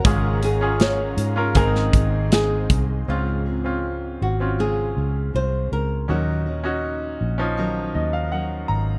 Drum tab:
HH |x-x-x-x-x-x-x-x-|----------------|----------------|
SD |----o----o--o---|----------------|----------------|
BD |o-------o-o---o-|----------------|----------------|